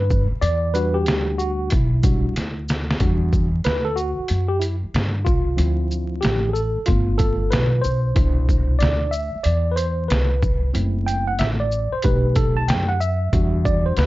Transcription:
0.00 0.28 G2 loud
0.00 0.26 B4 medium
0.10 kick loud
0.10 shaker medium
0.31 muted upright bass stroke medium
0.41 1.07 E2 loud
0.41 0.75 D5 loud
0.41 closed hi-hat medium
0.74 1.67 G3 medium
0.74 1.68 D4 medium
0.74 1.37 F#4 medium
0.74 0.96 B4 medium
0.74 closed hi-hat soft
0.74 shaker soft
0.94 1.40 G4 medium
1.06 1.68 D2 loud
1.06 snare loud
1.06 closed hi-hat medium
1.38 1.72 F#4 medium
1.38 shaker medium
1.70 2.23 B1 medium
1.70 2.64 E4 medium
1.70 kick medium
1.70 closed hi-hat loud
2.03 2.32 G3 medium
2.03 2.33 D4 soft
2.03 2.33 F#4 medium
2.03 kick loud
2.03 closed hi-hat medium
2.03 shaker medium
2.24 muted upright bass stroke soft
2.36 2.97 D2 medium
2.36 snare medium
2.36 closed hi-hat medium
2.69 snare loud
2.69 shaker medium
2.91 snare loud
3.00 3.62 E2 loud
3.00 3.47 G3 medium
3.00 3.47 D4 soft
3.00 3.47 F#4 medium
3.00 kick loud
3.00 closed hi-hat medium
3.33 kick medium
3.33 shaker soft
3.64 4.15 D2 medium
3.64 3.86 B4 medium
3.64 snare loud
3.64 closed hi-hat medium
3.85 3.96 A4 medium
3.96 4.46 F#4 medium
3.96 shaker medium
4.19 muted upright bass stroke soft
4.28 4.80 F#2 medium
4.28 closed hi-hat medium
4.48 4.61 G4 medium
4.59 4.74 E4 medium
4.59 closed hi-hat medium
4.59 shaker medium
4.83 muted upright bass stroke soft
4.94 5.25 G2 medium
4.94 snare loud
4.94 closed hi-hat medium
5.24 5.57 C2 medium
5.24 6.25 F4 medium
5.24 kick loud
5.24 shaker soft
5.56 6.20 D2 loud
5.56 6.50 F3 medium
5.56 6.51 C4 medium
5.56 6.51 E4 medium
5.56 closed hi-hat medium
5.91 shaker soft
6.21 6.74 A1 medium
6.21 6.50 G4 medium
6.21 snare loud
6.21 closed hi-hat medium
6.49 6.55 G#4 medium
6.49 6.88 A4 medium
6.55 shaker medium
6.76 muted upright bass stroke soft
6.86 7.49 G1 medium
6.86 7.80 A3 soft
6.86 7.80 B3 soft
6.86 7.80 F4 medium
6.86 kick medium
6.86 closed hi-hat medium
7.18 7.52 A4 medium
7.18 kick loud
7.18 closed hi-hat medium
7.18 shaker medium
7.50 7.83 B1 medium
7.50 7.85 B4 medium
7.50 snare loud
7.50 closed hi-hat medium
7.82 8.15 B1 medium
7.82 8.76 C5 loud
7.82 shaker medium
8.15 8.78 C2 loud
8.15 9.08 B2 medium
8.15 9.09 D4 soft
8.15 9.09 E4 medium
8.15 kick loud
8.15 closed hi-hat medium
8.49 kick medium
8.49 shaker soft
8.79 9.31 D2 medium
8.79 9.13 D5 loud
8.79 snare loud
8.79 closed hi-hat medium
9.11 9.46 E5 medium
9.11 shaker medium
9.35 muted upright bass stroke soft
9.43 10.07 E2 medium
9.43 9.73 D5 medium
9.43 closed hi-hat medium
9.72 9.77 B4 medium
9.76 10.10 C5 medium
9.76 closed hi-hat medium
9.76 shaker medium
10.08 10.72 C2 loud
10.08 10.70 B4 medium
10.08 snare loud
10.08 closed hi-hat medium
10.43 kick loud
10.43 shaker medium
10.73 11.36 F#1 loud
10.73 11.67 A3 medium
10.73 11.67 C4 medium
10.73 11.68 E4 medium
10.73 closed hi-hat medium
11.07 11.26 G5 medium
11.07 closed hi-hat soft
11.07 shaker soft
11.28 11.40 F#5 medium
11.39 11.90 A1 medium
11.39 11.49 E5 loud
11.39 snare loud
11.39 closed hi-hat medium
11.60 11.93 D5 medium
11.72 shaker medium
11.92 12.03 C5 medium
11.92 muted upright bass stroke soft
12.02 12.69 B1 loud
12.02 12.97 A3 soft
12.02 12.97 D#4 medium
12.02 12.96 G4 medium
12.02 12.34 B4 medium
12.02 kick loud
12.02 closed hi-hat medium
12.36 12.57 A4 medium
12.36 kick medium
12.36 closed hi-hat medium
12.36 shaker medium
12.57 12.69 A5 loud
12.68 13.29 F#2 medium
12.68 12.88 G5 medium
12.68 snare loud
12.68 closed hi-hat medium
12.88 12.99 F#5 medium
13.00 13.67 E5 loud
13.00 shaker medium
13.32 13.94 E2 loud
13.32 14.06 G3 soft
13.32 14.06 D4 soft
13.32 14.06 F#4 medium
13.32 kick loud
13.32 closed hi-hat medium
13.65 13.86 D5 medium
13.65 kick medium
13.65 shaker soft
13.86 13.96 C5 medium
13.97 14.06 D2 medium
13.97 14.06 B4 loud
13.97 snare loud
13.97 closed hi-hat medium

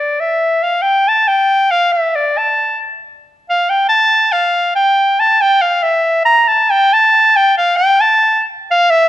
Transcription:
0.00 0.22 D5 medium
0.20 0.65 E5 medium
0.63 0.83 F5 medium
0.82 1.10 G5 medium
1.08 1.29 A5 medium
1.27 1.72 G5 medium
1.71 1.94 F5 medium
1.92 2.17 E5 medium
2.15 2.39 D5 medium
2.37 2.81 A5 medium
3.50 3.71 F5 medium
3.70 3.88 G5 medium
3.89 4.34 A5 medium
4.32 4.75 F5 medium
4.75 5.21 G5 medium
5.19 5.43 A5 medium
5.41 5.63 G5 medium
5.61 5.84 F5 medium
5.83 6.25 E5 medium
6.25 6.49 A#5 loud
6.48 6.72 A5 medium
6.70 6.95 G5 loud
6.93 7.38 A5 loud
7.36 7.56 G5 medium
7.57 7.78 F5 medium
7.76 8.02 G5 medium
8.01 8.45 A5 medium
8.71 8.92 F5 loud
8.90 9.08 E5 loud

